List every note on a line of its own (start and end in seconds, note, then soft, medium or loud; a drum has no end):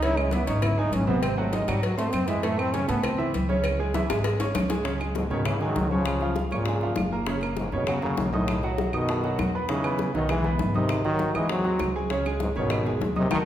0.00 0.42 C#2 loud
0.00 0.27 C#3 medium
0.00 0.27 C#4 medium
0.00 0.19 E4 loud
0.00 0.27 C#5 medium
0.00 cowbell loud
0.00 high conga soft
0.17 0.34 G#3 medium
0.17 claves medium
0.31 0.45 E3 medium
0.31 0.46 B3 medium
0.31 0.45 E4 medium
0.31 0.45 E5 medium
0.31 cowbell medium
0.31 high conga loud
0.47 0.89 G#1 medium
0.47 0.72 C#4 medium
0.47 0.64 D#4 medium
0.47 0.72 C#5 medium
0.47 0.72 C#6 medium
0.47 cowbell medium
0.47 high conga soft
0.62 0.79 E4 loud
0.62 cowbell loud
0.62 high conga soft
0.62 low conga medium
0.62 claves medium
0.77 1.02 G#3 medium
0.77 0.95 D#4 loud
0.77 1.02 G#4 medium
0.77 1.03 G#5 medium
0.77 high conga soft
0.92 1.62 G#1 loud
0.92 1.07 C#4 medium
0.92 cowbell medium
0.92 high conga medium
1.07 1.32 C3 medium
1.07 1.24 B3 medium
1.07 1.32 C4 medium
1.07 1.32 C5 medium
1.07 high conga medium
1.22 1.37 C4 loud
1.22 cowbell loud
1.22 high conga soft
1.22 claves medium
1.38 1.50 F#3 medium
1.38 1.54 A3 medium
1.38 1.50 F#4 medium
1.38 1.50 F#5 medium
1.38 high conga soft
1.52 1.65 D#3 medium
1.52 1.69 G#3 medium
1.52 1.65 D#4 medium
1.52 1.65 D#5 medium
1.52 cowbell medium
1.52 high conga loud
1.68 2.10 G#2 loud
1.68 1.93 F#3 medium
1.68 1.83 G3 loud
1.68 1.93 F#4 medium
1.68 1.93 F#5 medium
1.68 cowbell medium
1.68 high conga soft
1.68 claves medium
1.82 1.98 F#3 medium
1.82 cowbell loud
1.82 high conga soft
1.97 2.13 A3 loud
1.97 2.22 C4 medium
1.97 2.23 C5 medium
1.97 2.23 C6 medium
1.97 cowbell medium
1.97 high conga soft
2.12 2.83 F#2 loud
2.12 2.29 C4 loud
2.12 cowbell medium
2.12 high conga medium
2.12 claves medium
2.27 2.40 E3 medium
2.27 2.46 G#3 loud
2.27 2.40 E4 medium
2.27 2.41 E5 medium
2.27 cowbell medium
2.27 high conga soft
2.43 2.68 A2 medium
2.43 2.68 A3 medium
2.43 2.60 A3 medium
2.43 2.68 A4 medium
2.43 cowbell loud
2.43 high conga soft
2.59 2.75 C4 loud
2.59 high conga soft
2.59 claves medium
2.73 2.86 C#3 medium
2.73 2.89 C#4 loud
2.73 2.86 C#4 medium
2.73 2.86 C#5 medium
2.73 cowbell medium
2.73 high conga loud
2.88 3.31 A2 medium
2.88 3.13 A3 medium
2.88 3.05 B3 medium
2.88 3.13 A4 medium
2.88 3.13 A5 medium
2.88 cowbell medium
2.88 high conga soft
3.04 3.34 C4 loud
3.04 cowbell loud
3.04 high conga soft
3.04 low conga medium
3.04 claves medium
3.18 3.43 E3 medium
3.18 3.43 E4 medium
3.18 3.43 E5 medium
3.18 high conga soft
3.18 low conga medium
3.34 4.04 C#2 medium
3.34 cowbell medium
3.34 high conga medium
3.49 3.74 C#3 medium
3.49 3.74 C#4 medium
3.49 3.74 C#5 medium
3.49 high conga medium
3.64 cowbell loud
3.64 high conga soft
3.64 claves medium
3.79 3.92 G#3 medium
3.79 3.92 G#4 medium
3.79 3.92 G#5 medium
3.79 high conga soft
3.94 4.06 E3 medium
3.94 4.07 E4 medium
3.94 4.07 E5 medium
3.94 cowbell medium
3.94 high bongo medium
3.94 high conga loud
4.09 4.52 G#1 medium
4.09 4.34 G#3 medium
4.09 4.34 G#4 medium
4.09 4.35 G#5 medium
4.09 cowbell medium
4.09 high bongo loud
4.09 high conga soft
4.09 claves medium
4.24 cowbell loud
4.24 high bongo medium
4.24 high conga soft
4.39 4.64 C#4 medium
4.39 4.65 C#5 medium
4.39 4.65 C#6 medium
4.39 cowbell medium
4.39 low bongo medium
4.39 high conga soft
4.55 5.25 C#2 loud
4.55 cowbell medium
4.55 low bongo loud
4.55 high conga loud
4.55 claves medium
4.70 4.82 G#3 medium
4.70 4.82 G#4 medium
4.70 4.82 G#5 medium
4.70 cowbell medium
4.70 low bongo medium
4.70 high conga soft
4.84 4.97 C#3 medium
4.84 4.97 C#4 medium
4.84 4.97 C#5 medium
4.84 high bongo medium
4.84 high conga soft
4.99 5.24 G#3 medium
4.99 5.25 G#4 medium
4.99 5.25 G#5 medium
4.99 high bongo soft
4.99 claves medium
5.14 5.29 G#2 medium
5.14 5.29 B2 medium
5.14 high bongo medium
5.14 high conga medium
5.30 5.72 G#1 medium
5.30 5.48 B2 medium
5.30 5.43 C#3 medium
5.30 5.47 D#3 medium
5.30 5.43 C#4 medium
5.30 5.43 C#5 medium
5.30 high bongo soft
5.30 high conga soft
5.45 5.62 C#3 loud
5.45 5.58 E3 medium
5.45 5.63 E3 medium
5.45 5.58 E4 medium
5.45 5.58 E5 medium
5.45 high bongo medium
5.45 high conga soft
5.45 low conga medium
5.45 claves medium
5.61 5.92 D#3 loud
5.61 5.93 F#3 loud
5.61 5.86 G#3 medium
5.61 5.86 G#4 medium
5.61 5.86 G#5 medium
5.61 high bongo soft
5.61 high conga soft
5.76 6.46 C#2 medium
5.76 high bongo soft
5.76 low bongo medium
5.76 high conga medium
5.91 6.36 C#3 loud
5.91 6.37 F3 medium
5.91 6.16 C#4 medium
5.91 6.16 C#5 medium
5.91 6.16 C#6 medium
5.91 high conga medium
6.05 high bongo medium
6.05 claves medium
6.21 6.46 F3 medium
6.21 6.46 F4 medium
6.21 6.46 F5 medium
6.21 high bongo soft
6.21 high conga soft
6.36 high bongo medium
6.36 high conga loud
6.51 6.94 G#1 medium
6.51 7.08 A#2 medium
6.51 7.08 C#3 medium
6.51 6.64 C#4 medium
6.51 6.64 C#5 medium
6.51 6.64 C#6 medium
6.51 high bongo soft
6.51 high conga soft
6.51 claves medium
6.66 6.79 G#3 medium
6.66 6.79 G#4 medium
6.66 6.80 G#5 medium
6.66 high bongo medium
6.66 high conga soft
6.81 7.07 F3 medium
6.81 7.07 F4 medium
6.81 7.07 F5 medium
6.81 high bongo soft
6.81 high conga soft
6.96 7.67 F#1 medium
6.96 high bongo soft
6.96 low bongo medium
6.96 high conga medium
6.96 claves medium
7.12 7.24 A#3 medium
7.12 7.24 A#4 medium
7.12 7.25 A#5 medium
7.12 high conga soft
7.26 7.39 C#3 medium
7.26 7.39 C#4 medium
7.26 7.39 C#5 medium
7.26 high bongo medium
7.26 high conga soft
7.41 7.67 A#3 medium
7.41 7.67 A#4 medium
7.41 7.67 A#5 medium
7.41 high bongo soft
7.41 claves medium
7.57 7.72 G#2 medium
7.57 7.72 C#3 medium
7.57 high bongo medium
7.57 high conga medium
7.72 8.14 F#2 medium
7.72 7.87 B2 medium
7.72 7.85 C#3 medium
7.72 7.86 D#3 medium
7.72 7.85 C#4 medium
7.72 7.85 C#5 medium
7.72 high bongo soft
7.72 high conga soft
7.87 8.01 C#3 medium
7.87 8.02 F#3 medium
7.87 8.00 F#3 medium
7.87 8.01 F#4 medium
7.87 8.00 F#5 medium
7.87 high bongo medium
7.87 high conga soft
7.87 low conga medium
7.87 claves medium
8.02 8.31 C#3 medium
8.02 8.31 F#3 medium
8.02 8.27 A#3 medium
8.02 8.28 A#4 medium
8.02 8.28 A#5 medium
8.02 high bongo soft
8.02 high conga soft
8.02 low conga medium
8.17 8.88 B1 medium
8.17 high bongo soft
8.17 low bongo medium
8.17 high conga medium
8.32 8.75 A2 medium
8.32 8.75 D#3 medium
8.32 8.58 D#4 medium
8.32 8.58 D#5 medium
8.32 8.58 D#6 medium
8.32 high conga medium
8.48 high bongo medium
8.48 high conga soft
8.48 claves medium
8.63 8.88 F#3 medium
8.63 8.88 F#4 medium
8.63 8.88 F#5 medium
8.63 high bongo soft
8.63 high conga soft
8.78 high bongo medium
8.78 high conga loud
8.93 9.36 F#2 medium
8.93 9.50 B2 loud
8.93 9.50 D#3 medium
8.93 9.06 D#4 medium
8.93 9.06 D#5 medium
8.93 9.06 D#6 medium
8.93 high bongo soft
8.93 high conga soft
8.93 claves medium
9.08 9.21 A3 medium
9.08 9.21 A4 medium
9.08 9.22 A5 medium
9.08 high bongo medium
9.08 high conga soft
9.24 9.48 F#3 medium
9.24 9.49 F#4 medium
9.24 9.49 F#5 medium
9.24 high bongo soft
9.24 high conga soft
9.39 10.09 E2 medium
9.39 high bongo soft
9.39 low bongo medium
9.39 high conga medium
9.39 claves medium
9.54 9.67 B3 medium
9.54 9.67 B4 medium
9.54 9.67 B5 medium
9.54 high conga soft
9.69 10.11 C#3 loud
9.69 9.82 D#3 medium
9.69 10.11 E3 medium
9.69 9.82 D#4 medium
9.69 9.82 D#5 medium
9.69 high bongo medium
9.69 high conga soft
9.84 10.09 B3 medium
9.84 10.09 B4 medium
9.84 10.09 B5 medium
9.84 high bongo soft
9.84 high conga soft
9.84 claves medium
9.99 high bongo medium
9.99 high conga medium
10.13 10.56 B1 medium
10.13 10.27 D#3 medium
10.13 10.29 D#3 medium
10.13 10.28 F#3 medium
10.13 10.27 D#4 medium
10.13 10.27 D#5 medium
10.13 high bongo soft
10.13 high conga soft
10.29 10.58 E3 loud
10.29 10.58 G#3 medium
10.29 10.42 G#3 medium
10.29 10.42 G#4 medium
10.29 10.42 G#5 medium
10.29 high bongo medium
10.29 high conga soft
10.29 low conga medium
10.29 claves medium
10.44 10.69 B3 medium
10.44 10.69 B4 medium
10.44 10.70 B5 medium
10.44 high bongo soft
10.44 high conga soft
10.44 low conga medium
10.59 11.30 G#1 medium
10.59 high bongo soft
10.59 low bongo medium
10.59 high conga medium
10.74 11.03 C3 medium
10.74 11.02 D#3 medium
10.74 11.00 D#4 medium
10.74 11.00 D#5 medium
10.74 11.00 D#6 medium
10.74 high conga medium
10.89 high bongo medium
10.89 high conga soft
10.89 claves medium
11.05 11.37 D#3 loud
11.05 11.29 F#3 medium
11.05 11.37 F#3 medium
11.05 11.30 F#4 medium
11.05 11.30 F#5 medium
11.05 high bongo soft
11.05 high conga soft
11.19 high bongo medium
11.19 high conga medium
11.34 11.77 D#2 medium
11.34 11.50 E3 loud
11.34 11.49 G#3 medium
11.34 11.47 D#4 medium
11.34 11.48 D#5 medium
11.34 11.48 D#6 medium
11.34 high bongo soft
11.34 high conga soft
11.34 claves medium
11.49 11.93 F#3 loud
11.49 11.62 G#3 medium
11.49 11.92 C4 medium
11.49 11.62 G#4 medium
11.49 11.63 G#5 medium
11.49 high bongo medium
11.49 high conga soft
11.64 11.90 F#3 medium
11.64 11.90 F#4 medium
11.64 11.90 F#5 medium
11.64 high bongo soft
11.64 high conga soft
11.79 12.50 C#2 medium
11.79 high bongo soft
11.79 low bongo medium
11.79 high conga medium
11.79 claves medium
11.95 12.08 G#3 medium
11.95 12.08 G#4 medium
11.95 12.08 G#5 medium
11.95 high conga soft
12.10 12.23 C#3 medium
12.10 12.23 C#4 medium
12.10 12.23 C#5 medium
12.10 high bongo medium
12.10 high conga soft
12.25 12.51 G#3 medium
12.25 12.51 G#4 medium
12.25 12.51 G#5 medium
12.25 high bongo soft
12.25 high conga soft
12.25 claves medium
12.40 12.49 G#2 medium
12.40 12.48 B2 medium
12.40 high bongo medium
12.40 high conga medium
12.55 12.98 G#1 medium
12.55 12.99 B2 medium
12.55 12.68 C#3 medium
12.55 12.99 D#3 medium
12.55 12.69 C#4 medium
12.55 12.69 C#5 medium
12.55 high bongo soft
12.55 high conga soft
12.70 12.84 E3 medium
12.70 12.84 E4 medium
12.70 12.84 E5 medium
12.70 high bongo medium
12.70 high conga soft
12.70 low conga medium
12.70 claves medium
12.85 13.11 G#3 medium
12.85 13.11 G#4 medium
12.85 13.11 G#5 medium
12.85 high bongo soft
12.85 high conga soft
12.85 low conga medium
13.00 13.29 D#2 medium
13.00 high bongo soft
13.00 low bongo medium
13.00 high conga medium
13.16 13.30 C3 loud
13.16 13.31 D#3 medium
13.16 13.29 D#4 medium
13.16 13.29 D#5 medium
13.16 13.29 D#6 medium
13.16 high conga medium
13.31 13.43 D#2 medium
13.31 13.38 D#3 medium
13.31 13.39 D#3 loud
13.31 13.41 D#4 medium
13.31 13.41 F#4 loud
13.31 13.41 A4 medium
13.31 low bongo loud
13.31 high conga medium
13.31 claves medium